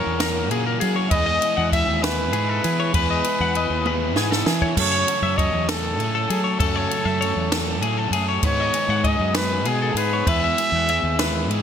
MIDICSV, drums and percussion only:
0, 0, Header, 1, 2, 480
1, 0, Start_track
1, 0, Key_signature, 4, "major"
1, 0, Tempo, 610376
1, 882, Time_signature, 6, 3, 24, 8
1, 9139, End_track
2, 0, Start_track
2, 0, Title_t, "Drums"
2, 158, Note_on_c, 9, 38, 116
2, 158, Note_on_c, 9, 51, 109
2, 237, Note_off_c, 9, 38, 0
2, 237, Note_off_c, 9, 51, 0
2, 399, Note_on_c, 9, 51, 80
2, 478, Note_off_c, 9, 51, 0
2, 638, Note_on_c, 9, 51, 84
2, 716, Note_off_c, 9, 51, 0
2, 873, Note_on_c, 9, 51, 114
2, 876, Note_on_c, 9, 36, 115
2, 952, Note_off_c, 9, 51, 0
2, 954, Note_off_c, 9, 36, 0
2, 1116, Note_on_c, 9, 51, 80
2, 1194, Note_off_c, 9, 51, 0
2, 1356, Note_on_c, 9, 36, 84
2, 1361, Note_on_c, 9, 51, 82
2, 1435, Note_off_c, 9, 36, 0
2, 1439, Note_off_c, 9, 51, 0
2, 1602, Note_on_c, 9, 38, 118
2, 1602, Note_on_c, 9, 51, 103
2, 1681, Note_off_c, 9, 38, 0
2, 1681, Note_off_c, 9, 51, 0
2, 1833, Note_on_c, 9, 51, 81
2, 1911, Note_off_c, 9, 51, 0
2, 2077, Note_on_c, 9, 51, 85
2, 2155, Note_off_c, 9, 51, 0
2, 2312, Note_on_c, 9, 51, 113
2, 2313, Note_on_c, 9, 36, 125
2, 2391, Note_off_c, 9, 51, 0
2, 2392, Note_off_c, 9, 36, 0
2, 2551, Note_on_c, 9, 51, 91
2, 2630, Note_off_c, 9, 51, 0
2, 2793, Note_on_c, 9, 51, 87
2, 2871, Note_off_c, 9, 51, 0
2, 3033, Note_on_c, 9, 48, 72
2, 3111, Note_off_c, 9, 48, 0
2, 3272, Note_on_c, 9, 38, 85
2, 3350, Note_off_c, 9, 38, 0
2, 3397, Note_on_c, 9, 38, 84
2, 3476, Note_off_c, 9, 38, 0
2, 3511, Note_on_c, 9, 38, 114
2, 3589, Note_off_c, 9, 38, 0
2, 3633, Note_on_c, 9, 36, 98
2, 3711, Note_off_c, 9, 36, 0
2, 3752, Note_on_c, 9, 36, 107
2, 3753, Note_on_c, 9, 49, 120
2, 3831, Note_off_c, 9, 36, 0
2, 3831, Note_off_c, 9, 49, 0
2, 3995, Note_on_c, 9, 51, 97
2, 4073, Note_off_c, 9, 51, 0
2, 4233, Note_on_c, 9, 36, 86
2, 4238, Note_on_c, 9, 51, 82
2, 4312, Note_off_c, 9, 36, 0
2, 4316, Note_off_c, 9, 51, 0
2, 4473, Note_on_c, 9, 38, 114
2, 4473, Note_on_c, 9, 51, 115
2, 4552, Note_off_c, 9, 38, 0
2, 4552, Note_off_c, 9, 51, 0
2, 4717, Note_on_c, 9, 51, 79
2, 4796, Note_off_c, 9, 51, 0
2, 4957, Note_on_c, 9, 51, 85
2, 5035, Note_off_c, 9, 51, 0
2, 5191, Note_on_c, 9, 36, 124
2, 5192, Note_on_c, 9, 51, 114
2, 5270, Note_off_c, 9, 36, 0
2, 5270, Note_off_c, 9, 51, 0
2, 5436, Note_on_c, 9, 51, 84
2, 5515, Note_off_c, 9, 51, 0
2, 5678, Note_on_c, 9, 51, 81
2, 5757, Note_off_c, 9, 51, 0
2, 5914, Note_on_c, 9, 38, 120
2, 5914, Note_on_c, 9, 51, 110
2, 5993, Note_off_c, 9, 38, 0
2, 5993, Note_off_c, 9, 51, 0
2, 6153, Note_on_c, 9, 51, 79
2, 6231, Note_off_c, 9, 51, 0
2, 6392, Note_on_c, 9, 51, 85
2, 6471, Note_off_c, 9, 51, 0
2, 6627, Note_on_c, 9, 51, 112
2, 6630, Note_on_c, 9, 36, 124
2, 6706, Note_off_c, 9, 51, 0
2, 6708, Note_off_c, 9, 36, 0
2, 6870, Note_on_c, 9, 51, 88
2, 6949, Note_off_c, 9, 51, 0
2, 7111, Note_on_c, 9, 36, 90
2, 7112, Note_on_c, 9, 51, 86
2, 7190, Note_off_c, 9, 36, 0
2, 7191, Note_off_c, 9, 51, 0
2, 7350, Note_on_c, 9, 38, 117
2, 7350, Note_on_c, 9, 51, 117
2, 7428, Note_off_c, 9, 38, 0
2, 7428, Note_off_c, 9, 51, 0
2, 7591, Note_on_c, 9, 51, 85
2, 7669, Note_off_c, 9, 51, 0
2, 7837, Note_on_c, 9, 51, 94
2, 7916, Note_off_c, 9, 51, 0
2, 8075, Note_on_c, 9, 36, 122
2, 8077, Note_on_c, 9, 51, 119
2, 8154, Note_off_c, 9, 36, 0
2, 8156, Note_off_c, 9, 51, 0
2, 8321, Note_on_c, 9, 51, 91
2, 8399, Note_off_c, 9, 51, 0
2, 8560, Note_on_c, 9, 51, 87
2, 8639, Note_off_c, 9, 51, 0
2, 8801, Note_on_c, 9, 38, 119
2, 8801, Note_on_c, 9, 51, 105
2, 8879, Note_off_c, 9, 38, 0
2, 8879, Note_off_c, 9, 51, 0
2, 9049, Note_on_c, 9, 51, 83
2, 9127, Note_off_c, 9, 51, 0
2, 9139, End_track
0, 0, End_of_file